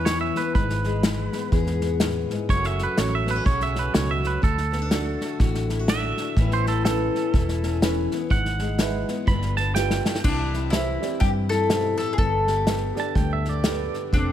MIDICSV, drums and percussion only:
0, 0, Header, 1, 2, 480
1, 0, Start_track
1, 0, Key_signature, 3, "major"
1, 0, Tempo, 484653
1, 550, Time_signature, 4, 2, 24, 8
1, 10145, Key_signature, 0, "major"
1, 14185, End_track
2, 0, Start_track
2, 0, Title_t, "Drums"
2, 59, Note_on_c, 9, 38, 109
2, 59, Note_on_c, 9, 44, 79
2, 158, Note_off_c, 9, 38, 0
2, 158, Note_off_c, 9, 44, 0
2, 350, Note_on_c, 9, 38, 36
2, 449, Note_off_c, 9, 38, 0
2, 544, Note_on_c, 9, 38, 34
2, 545, Note_on_c, 9, 36, 113
2, 643, Note_off_c, 9, 38, 0
2, 644, Note_off_c, 9, 36, 0
2, 691, Note_on_c, 9, 38, 35
2, 790, Note_off_c, 9, 38, 0
2, 831, Note_on_c, 9, 38, 36
2, 930, Note_off_c, 9, 38, 0
2, 1023, Note_on_c, 9, 38, 102
2, 1023, Note_on_c, 9, 44, 80
2, 1122, Note_off_c, 9, 38, 0
2, 1122, Note_off_c, 9, 44, 0
2, 1312, Note_on_c, 9, 38, 33
2, 1411, Note_off_c, 9, 38, 0
2, 1503, Note_on_c, 9, 38, 35
2, 1506, Note_on_c, 9, 36, 110
2, 1602, Note_off_c, 9, 38, 0
2, 1605, Note_off_c, 9, 36, 0
2, 1650, Note_on_c, 9, 38, 34
2, 1749, Note_off_c, 9, 38, 0
2, 1793, Note_on_c, 9, 38, 32
2, 1892, Note_off_c, 9, 38, 0
2, 1980, Note_on_c, 9, 38, 100
2, 1980, Note_on_c, 9, 44, 85
2, 2079, Note_off_c, 9, 38, 0
2, 2079, Note_off_c, 9, 44, 0
2, 2278, Note_on_c, 9, 38, 34
2, 2377, Note_off_c, 9, 38, 0
2, 2467, Note_on_c, 9, 36, 105
2, 2468, Note_on_c, 9, 38, 36
2, 2566, Note_off_c, 9, 36, 0
2, 2567, Note_off_c, 9, 38, 0
2, 2612, Note_on_c, 9, 38, 37
2, 2711, Note_off_c, 9, 38, 0
2, 2759, Note_on_c, 9, 38, 33
2, 2858, Note_off_c, 9, 38, 0
2, 2946, Note_on_c, 9, 38, 110
2, 2946, Note_on_c, 9, 44, 78
2, 3045, Note_off_c, 9, 38, 0
2, 3045, Note_off_c, 9, 44, 0
2, 3240, Note_on_c, 9, 38, 33
2, 3339, Note_off_c, 9, 38, 0
2, 3425, Note_on_c, 9, 36, 119
2, 3425, Note_on_c, 9, 38, 35
2, 3524, Note_off_c, 9, 38, 0
2, 3525, Note_off_c, 9, 36, 0
2, 3570, Note_on_c, 9, 38, 34
2, 3670, Note_off_c, 9, 38, 0
2, 3719, Note_on_c, 9, 38, 33
2, 3818, Note_off_c, 9, 38, 0
2, 3906, Note_on_c, 9, 38, 116
2, 3906, Note_on_c, 9, 44, 93
2, 4005, Note_off_c, 9, 38, 0
2, 4005, Note_off_c, 9, 44, 0
2, 4197, Note_on_c, 9, 38, 35
2, 4296, Note_off_c, 9, 38, 0
2, 4387, Note_on_c, 9, 36, 110
2, 4390, Note_on_c, 9, 38, 35
2, 4487, Note_off_c, 9, 36, 0
2, 4489, Note_off_c, 9, 38, 0
2, 4533, Note_on_c, 9, 38, 35
2, 4632, Note_off_c, 9, 38, 0
2, 4680, Note_on_c, 9, 38, 36
2, 4779, Note_off_c, 9, 38, 0
2, 4863, Note_on_c, 9, 38, 104
2, 4863, Note_on_c, 9, 44, 78
2, 4962, Note_off_c, 9, 38, 0
2, 4962, Note_off_c, 9, 44, 0
2, 5159, Note_on_c, 9, 38, 30
2, 5258, Note_off_c, 9, 38, 0
2, 5344, Note_on_c, 9, 38, 37
2, 5347, Note_on_c, 9, 36, 117
2, 5443, Note_off_c, 9, 38, 0
2, 5446, Note_off_c, 9, 36, 0
2, 5492, Note_on_c, 9, 38, 34
2, 5591, Note_off_c, 9, 38, 0
2, 5640, Note_on_c, 9, 38, 37
2, 5739, Note_off_c, 9, 38, 0
2, 5825, Note_on_c, 9, 38, 121
2, 5825, Note_on_c, 9, 44, 88
2, 5924, Note_off_c, 9, 38, 0
2, 5924, Note_off_c, 9, 44, 0
2, 6113, Note_on_c, 9, 38, 38
2, 6212, Note_off_c, 9, 38, 0
2, 6304, Note_on_c, 9, 38, 37
2, 6305, Note_on_c, 9, 36, 105
2, 6403, Note_off_c, 9, 38, 0
2, 6404, Note_off_c, 9, 36, 0
2, 6449, Note_on_c, 9, 38, 37
2, 6548, Note_off_c, 9, 38, 0
2, 6601, Note_on_c, 9, 38, 32
2, 6700, Note_off_c, 9, 38, 0
2, 6787, Note_on_c, 9, 38, 103
2, 6787, Note_on_c, 9, 44, 76
2, 6886, Note_off_c, 9, 38, 0
2, 6886, Note_off_c, 9, 44, 0
2, 7081, Note_on_c, 9, 38, 32
2, 7180, Note_off_c, 9, 38, 0
2, 7267, Note_on_c, 9, 36, 115
2, 7269, Note_on_c, 9, 38, 36
2, 7366, Note_off_c, 9, 36, 0
2, 7368, Note_off_c, 9, 38, 0
2, 7414, Note_on_c, 9, 38, 35
2, 7513, Note_off_c, 9, 38, 0
2, 7557, Note_on_c, 9, 38, 35
2, 7656, Note_off_c, 9, 38, 0
2, 7747, Note_on_c, 9, 38, 114
2, 7747, Note_on_c, 9, 44, 85
2, 7847, Note_off_c, 9, 38, 0
2, 7847, Note_off_c, 9, 44, 0
2, 8036, Note_on_c, 9, 38, 39
2, 8135, Note_off_c, 9, 38, 0
2, 8224, Note_on_c, 9, 36, 109
2, 8225, Note_on_c, 9, 38, 34
2, 8324, Note_off_c, 9, 36, 0
2, 8325, Note_off_c, 9, 38, 0
2, 8372, Note_on_c, 9, 38, 37
2, 8471, Note_off_c, 9, 38, 0
2, 8505, Note_on_c, 9, 38, 34
2, 8604, Note_off_c, 9, 38, 0
2, 8702, Note_on_c, 9, 38, 105
2, 8702, Note_on_c, 9, 44, 88
2, 8801, Note_off_c, 9, 38, 0
2, 8801, Note_off_c, 9, 44, 0
2, 8994, Note_on_c, 9, 38, 35
2, 9093, Note_off_c, 9, 38, 0
2, 9182, Note_on_c, 9, 36, 108
2, 9182, Note_on_c, 9, 38, 37
2, 9281, Note_off_c, 9, 36, 0
2, 9281, Note_off_c, 9, 38, 0
2, 9327, Note_on_c, 9, 38, 38
2, 9427, Note_off_c, 9, 38, 0
2, 9475, Note_on_c, 9, 38, 37
2, 9574, Note_off_c, 9, 38, 0
2, 9662, Note_on_c, 9, 38, 63
2, 9662, Note_on_c, 9, 44, 91
2, 9761, Note_off_c, 9, 38, 0
2, 9761, Note_off_c, 9, 44, 0
2, 9809, Note_on_c, 9, 38, 60
2, 9908, Note_off_c, 9, 38, 0
2, 9957, Note_on_c, 9, 38, 92
2, 10051, Note_off_c, 9, 38, 0
2, 10051, Note_on_c, 9, 38, 86
2, 10143, Note_off_c, 9, 38, 0
2, 10143, Note_on_c, 9, 36, 100
2, 10143, Note_on_c, 9, 38, 33
2, 10143, Note_on_c, 9, 49, 100
2, 10242, Note_off_c, 9, 36, 0
2, 10242, Note_off_c, 9, 38, 0
2, 10242, Note_off_c, 9, 49, 0
2, 10436, Note_on_c, 9, 38, 33
2, 10535, Note_off_c, 9, 38, 0
2, 10623, Note_on_c, 9, 38, 103
2, 10623, Note_on_c, 9, 44, 78
2, 10722, Note_off_c, 9, 38, 0
2, 10722, Note_off_c, 9, 44, 0
2, 10916, Note_on_c, 9, 38, 29
2, 11015, Note_off_c, 9, 38, 0
2, 11101, Note_on_c, 9, 38, 34
2, 11103, Note_on_c, 9, 36, 111
2, 11200, Note_off_c, 9, 38, 0
2, 11203, Note_off_c, 9, 36, 0
2, 11398, Note_on_c, 9, 38, 35
2, 11497, Note_off_c, 9, 38, 0
2, 11586, Note_on_c, 9, 38, 111
2, 11586, Note_on_c, 9, 44, 78
2, 11685, Note_off_c, 9, 38, 0
2, 11685, Note_off_c, 9, 44, 0
2, 11872, Note_on_c, 9, 38, 31
2, 11971, Note_off_c, 9, 38, 0
2, 12059, Note_on_c, 9, 38, 32
2, 12063, Note_on_c, 9, 36, 107
2, 12158, Note_off_c, 9, 38, 0
2, 12162, Note_off_c, 9, 36, 0
2, 12353, Note_on_c, 9, 38, 31
2, 12452, Note_off_c, 9, 38, 0
2, 12546, Note_on_c, 9, 38, 103
2, 12546, Note_on_c, 9, 44, 79
2, 12645, Note_off_c, 9, 38, 0
2, 12645, Note_off_c, 9, 44, 0
2, 12839, Note_on_c, 9, 38, 33
2, 12938, Note_off_c, 9, 38, 0
2, 13028, Note_on_c, 9, 36, 110
2, 13028, Note_on_c, 9, 38, 36
2, 13127, Note_off_c, 9, 36, 0
2, 13127, Note_off_c, 9, 38, 0
2, 13319, Note_on_c, 9, 38, 33
2, 13418, Note_off_c, 9, 38, 0
2, 13507, Note_on_c, 9, 38, 108
2, 13507, Note_on_c, 9, 44, 84
2, 13606, Note_off_c, 9, 38, 0
2, 13606, Note_off_c, 9, 44, 0
2, 13804, Note_on_c, 9, 38, 37
2, 13903, Note_off_c, 9, 38, 0
2, 13991, Note_on_c, 9, 36, 98
2, 13997, Note_on_c, 9, 38, 31
2, 14090, Note_off_c, 9, 36, 0
2, 14096, Note_off_c, 9, 38, 0
2, 14185, End_track
0, 0, End_of_file